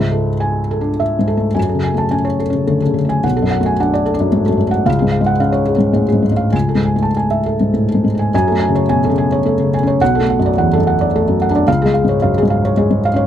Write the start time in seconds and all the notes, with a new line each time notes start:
Already playing: C#2 E5
0.00 G#2
0.12 A4
0.40 G#5
0.71 A4
0.81 D4
1.00 E5
1.19 G#2
1.27 A4
1.37 A3
1.54 F#2 G#5
1.69 A4
1.75 C#3
1.84 G#5
1.94 A3 A5
2.11 C#4 G#5
2.25 C#5
2.40 A4
2.50 C#3 C#4
2.67 D3 A3
2.82 A4
2.86 C#3
2.94 C#3
3.05 A3
3.09 G#5
3.24 B1 F#5
3.36 A4
3.42 F#2
3.51 F#5
3.61 A3
3.66 G#5
3.80 D4 F#5
3.94 D5
4.06 A4
4.14 D4
4.20 F#2
4.32 G#2 A3
4.46 F#2 A4
4.57 F#2
4.67 A3 F#5
4.85 C#2 F5
4.99 G#2 G#4
5.12 F5
5.21 G#3
5.26 F#5
5.40 C#4 F5
5.52 C#5
5.66 G#4
5.76 G#2 C#4
5.93 A2 G#3
6.08 G#4
6.13 G#2
6.23 G#2
6.32 G#3
6.37 F5
6.53 C#2 G#5
6.69 A4
6.75 G#2
6.85 G#5
6.96 A3
7.02 A5
7.17 G#5
7.31 E5
7.46 A4
7.61 G#2
7.74 A2 A3
7.89 A4
7.95 G#2
8.04 G#2
8.15 A3
8.19 G#5
8.34 F#2 G#5
8.48 A4
8.52 A3
8.60 G#5
8.69 C#3
8.75 C#5
8.89 B2 G#5
9.05 A4
9.10 C#3
9.18 G#5
9.32 C#5
9.45 A3 A4
9.60 C#3
9.74 G#5
9.83 C#4
9.87 C#5
10.01 B1 F#5
10.15 A4
10.21 A3
10.30 F#5
10.39 F#2
10.46 D5
10.58 E2 F#5
10.73 F#2 A4
10.87 F#5
11.01 D5
11.15 A3 A4
11.28 F#2
11.42 F#5
11.51 D4
11.56 D5
11.68 C#2 F5
11.82 G#3 G#4
11.94 F5
12.04 G#2
12.09 C#5
12.22 F#2 F5
12.38 G#4
12.43 G#2
12.50 F5
12.65 C#5
12.77 G#3 G#4
12.90 G#2
13.05 F5
13.14 C#4 C#5